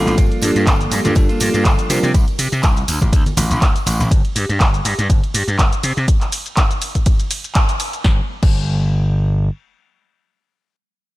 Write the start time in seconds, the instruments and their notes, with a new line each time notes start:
Already playing: tine electric piano G3 A#3 D4 F4 A4
0.06 slap bass A1, clean electric guitar C4 F4, tambourine, shaker
0.17 slap bass G1, clean electric guitar F3 A#3 D4 F4, kick, closed hi-hat, ride, tambourine, shaker
0.30 closed hi-hat, tambourine
0.41 slap bass G2, clean electric guitar F3 A#3 D4 F4, tine electric piano G3 A#3 D4 F4 A4, open hi-hat, ride, tambourine, shaker
0.55 slap bass G2, clean electric guitar A#3 D4 F4, closed hi-hat, tambourine, shaker
0.66 slap bass G1, clean electric guitar F3 A#3 D4 F4, kick, clap, closed hi-hat, ride, tambourine, shaker
0.80 closed hi-hat, tambourine, shaker
0.91 slap bass G2, clap, open hi-hat, ride, tambourine, shaker
1.04 slap bass G2, tine electric piano G3 A#3 D4 F4 A4, clean electric guitar A#3 D4 F4, closed hi-hat, tambourine, high conga, shaker
1.15 slap bass G1, tine electric piano G3 A#3 D4 F4 A4, kick, closed hi-hat, ride, tambourine, shaker
1.29 clean electric guitar A#3 D4 F4, closed hi-hat, tambourine
1.40 slap bass G2, clean electric guitar F3 A#3 D4 F4, open hi-hat, ride, tambourine, shaker
1.53 slap bass G2, clean electric guitar A#3 D4 F4, closed hi-hat, tambourine, shaker
1.64 slap bass G1, clean electric guitar F3, kick, clap, closed hi-hat, ride, tambourine, shaker
1.79 closed hi-hat, tambourine, shaker
1.89 slap bass C3, clean electric guitar F3 A#3 C4 G4, tine electric piano G3 C4 D4 F4 A#4, open hi-hat, ride, tambourine, shaker
2.03 slap bass C3, tambourine, shaker
2.14 slap bass C2, kick, closed hi-hat, ride, tambourine, shaker
2.28 closed hi-hat, tambourine
2.39 slap bass C3, open hi-hat, ride, tambourine, shaker
2.52 slap bass C3, closed hi-hat, tambourine, shaker
2.63 slap bass C2, kick, clap, closed hi-hat, ride, tambourine, shaker
2.76 closed hi-hat, tambourine, shaker
2.88 slap bass D2, open hi-hat, ride, tambourine, shaker
3.01 slap bass A1, kick, closed hi-hat, tambourine, high conga, shaker
3.13 slap bass D2, kick, closed hi-hat, ride, tambourine, shaker
3.26 muted slap bass stroke, closed hi-hat, tambourine, high conga, shaker
3.37 slap bass A1, open hi-hat, ride, tambourine, high conga, shaker
3.51 slap bass A1, closed hi-hat, tambourine, shaker
3.62 kick, clap, closed hi-hat, ride, tambourine, shaker
3.76 closed hi-hat, tambourine, shaker
3.86 slap bass A1, open hi-hat, ride, tambourine, shaker
4.00 slap bass A1, tambourine, shaker
4.11 slap bass G1, kick, closed hi-hat, ride, shaker
4.25 closed hi-hat
4.36 slap bass G2, open hi-hat, ride, shaker
4.49 slap bass G2, closed hi-hat, shaker
4.60 slap bass G1, kick, clap, closed hi-hat, ride, shaker
4.74 closed hi-hat, shaker
4.85 slap bass G2, clap, open hi-hat, ride, shaker
4.99 slap bass G2, closed hi-hat, shaker
5.10 slap bass G1, kick, closed hi-hat, ride, shaker
5.24 closed hi-hat
5.34 slap bass G2, open hi-hat, ride, shaker
5.48 slap bass G2, closed hi-hat, shaker
5.59 slap bass G1, kick, clap, closed hi-hat, ride, shaker
5.73 closed hi-hat, shaker
5.83 slap bass C3, open hi-hat, ride, shaker
5.97 slap bass C3, shaker
6.08 kick, closed hi-hat, ride, shaker
6.21 clap, closed hi-hat, shaker
6.32 open hi-hat, ride, shaker
6.46 closed hi-hat, shaker
6.57 kick, clap, closed hi-hat, ride, shaker
6.71 closed hi-hat, shaker
6.82 open hi-hat, ride, shaker
6.95 kick, closed hi-hat, shaker
7.06 kick, closed hi-hat, ride, shaker
7.20 closed hi-hat, shaker
7.31 open hi-hat, ride, shaker
7.44 closed hi-hat, shaker
7.55 kick, clap, closed hi-hat, ride, shaker
7.69 closed hi-hat, shaker
7.80 open hi-hat, ride, shaker
7.93 closed hi-hat, shaker
8.04 slap bass G1, kick, snare
8.43 slap bass G1, kick, crash